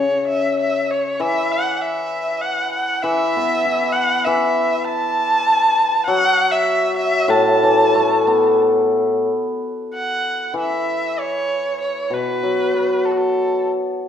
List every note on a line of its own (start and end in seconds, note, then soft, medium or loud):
0.00 1.22 C#3 soft
0.00 0.26 C#5 medium
0.27 0.58 E5 medium
0.60 0.92 E5 medium
0.90 1.23 C#5 medium
1.20 3.02 E3 medium
1.20 1.53 E5 medium
1.51 1.77 F#5 medium
1.77 1.82 F#5 medium
1.81 2.42 E5 medium
2.41 2.71 F#5 medium
2.72 3.04 F#5 medium
3.02 4.25 E3 medium
3.02 3.94 E5 loud
3.37 4.58 B3 medium
3.66 4.88 E4 soft
3.92 4.26 F#5 loud
4.24 6.10 E3 medium
4.24 4.86 E5 medium
4.84 6.06 A5 loud
6.06 7.95 F#3 medium
6.06 6.53 F#5 loud
6.51 6.96 E5 loud
6.96 7.31 E5 loud
7.28 9.24 A2 medium
7.28 8.59 A5 medium
7.63 8.93 E3 medium
7.95 9.26 A3 medium
8.27 9.59 B3 medium
9.94 10.53 F#5 medium
10.54 12.44 E3 medium
10.59 11.21 E5 medium
11.19 11.80 C#5 medium
11.80 12.15 C#5 medium
12.10 13.96 B2 soft
12.10 13.07 B4 medium
12.43 13.66 F#3 soft
12.74 13.97 B3 soft
13.05 13.13 A4 medium
13.11 13.19 F#4 soft
13.17 13.66 A4 medium